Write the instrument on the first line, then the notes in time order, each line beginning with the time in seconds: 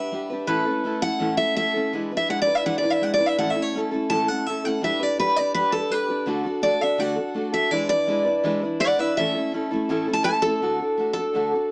steel-string acoustic guitar
Already playing: D4 G4 B4 E5
0.12 G3 D4 G4 B4
0.30 D4 G4 B4
0.47 A2 E3 A3 C#4 E4 A4 B4
0.65 A3 C#4 E4 A4
0.84 A3 C#4 E4 A4
1.02 A3 C#4 E4 A4 F#5
1.19 A2 E3 A3 C#4 E4 A4
1.37 A3 C#4 E4 A4 E5
1.55 A3 C#4 E4 A4 E5
1.74 A3 C#4 E4 A4
1.93 E3 G#3 D4 E4 B4
2.11 D4 E4 B4
2.17 E5
2.28 G#3 D4 E4 B4 F#5
2.42 D5
2.46 D4 E4 B4
2.55 E5
2.65 E3 G#3 D4 E4 B4 F#5
2.78 D5
2.83 D4 E4 B4
2.90 E5
3.01 G#3 D4 E4 B4 F#5
3.14 D5
3.18 D4 E4 B4
3.26 E5
3.38 A2 E3 A3 C#4 E4 A4 F#5
3.50 E5
3.55 A3 C#4 E4 A4
3.62 C#5
3.74 A3 C#4 E4 A4
3.91 A3 C#4 E4 A4
4.10 A2 E3 A3 C#4 E4 A4 A5
4.28 A3 C#4 E4 A4 F#5
4.46 A3 C#4 E4 A4 E5
4.64 A3 C#4 E4 A4 F#5
4.82 G3 D4 G4 B4 E5
4.99 D4 G4 B4 D5
5.18 G3 D4 G4 B4
5.36 G4 B4 D5
5.40 D4
5.54 G3 D4 G4 B4
5.72 D4 G4 A4 B4
5.90 G3 D4 G4 B4
6.08 D4 G4 B4
6.26 D3 A3 D4 F#4 A4
6.43 D4 F#4 A4
6.62 A3 D4 F#4 A4 D5
6.81 D4 F#4 A4 E5
6.98 D3 A3 D4 F#4 A4 F#5
7.16 D4 F#4 A4
7.34 A3 D4 F#4 A4
7.52 D4 F#4 A4 E5
7.71 E3 G#3 D4 E4 B4 D5
7.89 D4 E4 B4 D5
8.07 G#3 D4 E4 B4
8.25 D4 E4 B4
8.44 E3 G#3 D4 E4 B4
8.61 D4 E4 B4
8.80 G#3 D4 E4 B4 D5 F#5
8.99 D4 E4 B4 E5
9.16 A2 E3 A3 C#4 E4 A4 E5
9.34 A3 C#4 E4 A4
9.52 A3 C#4 E4 A4
9.71 A3 C#4 E4 A4
9.89 A2 E3 A3 C#4 E4 A4
10.07 A3 C#4 E4 A4
10.13 A5
10.24 A3 C#4 E4 A4 B4 A5
10.42 C#4 E4 A4
10.47 A3
10.62 D3 A3 D4 F#4 A4
10.79 D4 F#4 A4
10.97 A3 D4 F#4 A4
11.13 A4
11.18 D4 F#4
11.33 D3 A3 D4 F#4 A4
11.53 D4 F#4 A4